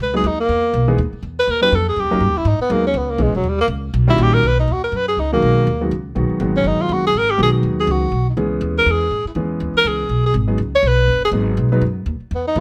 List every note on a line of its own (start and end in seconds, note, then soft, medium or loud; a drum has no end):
0.00 0.23 C#2 medium
0.00 0.14 B4 medium
0.13 0.23 F#3 medium
0.13 0.23 G#3 medium
0.13 0.23 B3 medium
0.13 0.24 D#4 medium
0.13 0.23 G#4 medium
0.13 0.29 G#4 medium
0.24 0.48 D#2 medium
0.24 0.39 D#4 medium
0.40 0.95 A#3 loud
0.49 0.73 E2 medium
0.73 0.97 B1 medium
0.88 0.97 E3 medium
0.88 0.97 G#3 medium
0.88 0.97 B3 medium
0.88 0.97 D#4 medium
0.88 0.97 G#4 medium
0.98 1.11 D#2 medium
1.13 muted upright bass stroke soft
1.23 1.46 E2 medium
1.39 1.52 B4 loud
1.47 1.71 D#2 medium
1.47 1.62 A#4 medium
1.61 1.71 F#3 medium
1.61 1.71 A#3 medium
1.61 1.71 C#4 medium
1.61 1.71 D#4 medium
1.61 1.71 G4 medium
1.61 1.77 B4 loud
1.72 1.96 F2 medium
1.72 1.88 A4 loud
1.89 2.01 G#4 loud
1.96 2.04 F#2 medium
1.96 2.38 G4 medium
2.04 2.13 D#2 medium
2.11 2.20 C#2 medium
2.11 2.20 F#3 medium
2.11 2.21 A#3 medium
2.11 2.20 C#4 medium
2.11 2.21 D#4 medium
2.11 2.21 A#4 medium
2.20 2.28 G2 medium
2.28 2.36 D#2 medium
2.37 2.44 C#2 medium
2.37 2.50 E4 medium
2.45 2.58 G#2 medium
2.45 2.61 D#4 medium
2.59 2.74 B3 loud
2.59 muted upright bass stroke soft
2.70 2.93 D#2 loud
2.70 2.83 F#3 medium
2.70 2.83 G#3 medium
2.70 2.85 A#3 medium
2.70 2.83 B3 medium
2.70 2.83 D#4 medium
2.70 2.83 G#4 medium
2.87 2.99 C#4 loud
2.94 3.18 C#2 medium
2.94 3.12 B3 medium
3.11 3.24 A#3 medium
3.18 3.27 B1 medium
3.18 3.32 E3 medium
3.18 3.32 G#3 medium
3.18 3.32 B3 medium
3.18 3.32 C#4 medium
3.18 3.32 G#4 medium
3.22 3.35 G#3 medium
3.27 3.34 G#1 medium
3.35 3.43 E1 medium
3.35 3.50 F#3 medium
3.44 3.67 D#2 medium
3.49 3.60 G3 medium
3.61 3.66 A#3 loud
3.68 3.92 C#2 loud
3.94 4.17 B1 loud
4.07 4.40 D#3 medium
4.07 4.41 G3 medium
4.07 4.41 A#3 medium
4.07 4.41 C#4 medium
4.07 4.24 E4 loud
4.07 4.41 F#4 medium
4.18 4.42 A#1 loud
4.22 4.36 G4 loud
4.34 4.48 A#4 loud
4.43 4.67 B1 medium
4.43 4.59 B4 loud
4.60 4.74 D#4 medium
4.68 4.91 D#2 medium
4.72 4.83 F#4 medium
4.84 4.97 A#4 medium
4.92 5.16 F#2 medium
4.96 5.08 B4 loud
5.08 5.21 G#4 medium
5.17 5.41 C#2 medium
5.17 5.32 D#4 medium
5.32 5.65 B2 medium
5.32 5.65 D#3 medium
5.32 5.65 F#3 medium
5.32 5.65 G#3 medium
5.32 5.88 A#3 loud
5.32 5.65 F#4 medium
5.42 5.66 B1 medium
5.67 5.90 D#2 medium
5.81 5.90 D#3 medium
5.81 5.90 F#3 medium
5.81 5.90 G#3 medium
5.81 5.90 B3 medium
5.81 5.90 F#4 medium
5.91 6.15 C#2 medium
6.15 6.28 B1 medium
6.15 6.39 D#3 medium
6.15 6.39 F#3 medium
6.15 6.39 G#3 medium
6.15 6.40 B3 medium
6.15 6.40 F#4 medium
6.29 muted upright bass stroke soft
6.40 6.63 G#1 loud
6.40 7.08 D#3 medium
6.40 7.08 F#3 medium
6.40 7.08 G#3 medium
6.40 7.08 B3 medium
6.40 7.08 F#4 medium
6.56 6.69 C#4 loud
6.64 6.77 G1 medium
6.64 6.83 D#4 medium
6.79 6.94 F4 medium
6.79 muted upright bass stroke soft
6.89 7.13 F#1 medium
6.89 7.05 F#4 medium
7.07 7.19 G#4 loud
7.14 7.38 G#1 medium
7.14 7.32 A#4 loud
7.31 7.40 G4 medium
7.38 7.62 B1 medium
7.38 8.05 D#3 medium
7.38 8.05 F#3 medium
7.38 8.05 G#3 medium
7.38 8.06 B3 medium
7.38 8.06 F#4 medium
7.43 7.50 G#4 loud
7.63 7.86 D#2 medium
7.80 7.93 G#4 medium
7.87 8.11 C#2 medium
7.92 8.28 F#4 medium
8.12 8.36 B1 medium
8.30 8.34 D#4 soft
8.37 8.60 C#2 medium
8.37 9.04 E3 medium
8.37 9.05 G#3 medium
8.37 9.04 B3 medium
8.37 9.05 C#4 medium
8.37 9.04 G#4 medium
8.61 8.85 D#2 medium
8.78 8.92 A#4 loud
8.86 9.10 E2 medium
8.91 9.27 G#4 medium
9.11 9.24 G#2 medium
9.25 9.32 E4 medium
9.25 muted upright bass stroke soft
9.35 9.59 E2 medium
9.35 10.03 E3 medium
9.35 10.03 G#3 medium
9.35 10.03 B3 medium
9.35 10.03 C#4 medium
9.35 10.03 G#4 medium
9.60 9.73 D#2 medium
9.74 9.89 A#4 loud
9.74 muted upright bass stroke soft
9.85 10.08 C#2 medium
9.85 10.25 G#4 medium
10.09 10.33 B1 medium
10.26 10.34 G#4 loud
10.34 10.58 G#1 medium
10.48 10.57 F#3 medium
10.48 10.57 G#3 medium
10.48 10.57 B3 medium
10.48 10.57 D#4 medium
10.48 10.57 G#4 medium
10.58 10.82 C#2 medium
10.75 10.89 C#5 loud
10.83 11.07 B1 medium
10.87 11.24 B4 loud
11.08 11.31 F#1 medium
11.25 11.30 G#4 loud
11.32 11.56 G#1 medium
11.32 11.68 F#3 medium
11.32 11.68 G#3 medium
11.32 11.68 B3 medium
11.32 11.68 D#4 medium
11.32 11.68 G#4 medium
11.57 11.81 B1 medium
11.72 11.81 F#3 medium
11.72 11.81 G#3 medium
11.72 11.81 B3 medium
11.72 11.81 D#4 medium
11.72 11.81 B4 medium
11.81 12.05 F#2 medium
12.06 12.19 D#2 medium
12.20 muted upright bass stroke soft
12.31 12.55 E2 medium
12.35 12.46 B3 medium
12.47 12.60 D#4 loud
12.55 12.60 G#2 medium
12.55 12.60 E3 medium
12.55 12.60 G#3 medium
12.55 12.60 B3 medium
12.55 12.60 D#4 medium
12.55 12.60 G#4 medium